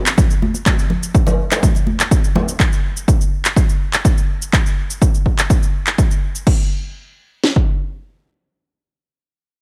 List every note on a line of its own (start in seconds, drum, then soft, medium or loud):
0.06 clap medium
0.06 cabasa medium
0.17 kick loud
0.17 low bongo medium
0.17 muted conga soft
0.17 low conga medium
0.17 cabasa medium
0.30 cabasa soft
0.42 high conga loud
0.54 muted conga soft
0.54 cabasa medium
0.66 kick loud
0.66 clap medium
0.66 low bongo medium
0.66 high conga medium
0.66 cabasa medium
0.79 cabasa soft
0.90 muted conga soft
0.90 low conga medium
1.03 cabasa medium
1.15 kick loud
1.15 cabasa medium
1.27 high bongo medium
1.27 muted conga soft
1.27 low conga medium
1.27 cabasa soft
1.51 clap medium
1.51 high bongo loud
1.51 cabasa medium
1.63 kick loud
1.63 high conga medium
1.63 low conga medium
1.63 cabasa medium
1.75 muted conga soft
1.75 cabasa soft
1.87 high conga medium
2.00 clap medium
2.00 high conga medium
2.00 cabasa medium
2.11 kick loud
2.11 low bongo medium
2.11 muted conga soft
2.11 cabasa medium
2.24 cabasa soft
2.35 high bongo medium
2.35 low bongo soft
2.35 high conga loud
2.35 low conga medium
2.48 muted conga soft
2.48 cabasa medium
2.60 kick loud
2.60 clap medium
2.60 cabasa medium
2.73 cabasa soft
2.97 cabasa medium
3.08 kick loud
3.08 cabasa medium
3.21 cabasa soft
3.45 clap medium
3.45 cabasa medium
3.56 kick loud
3.56 cabasa medium
3.69 cabasa soft
3.93 clap medium
3.93 cabasa medium
4.05 kick loud
4.05 cabasa medium
4.18 cabasa soft
4.42 cabasa medium
4.53 kick loud
4.53 clap medium
4.53 cabasa medium
4.66 cabasa soft
4.90 cabasa medium
5.02 kick loud
5.02 cabasa medium
5.14 cabasa soft
5.26 kick medium
5.39 clap medium
5.39 cabasa medium
5.50 kick loud
5.50 cabasa medium
5.63 cabasa soft
5.87 clap medium
5.87 cabasa medium
5.98 kick loud
5.98 cabasa medium
6.11 cabasa soft
6.35 cabasa medium
6.47 kick loud
6.47 crash medium
7.44 snare medium
7.56 kick medium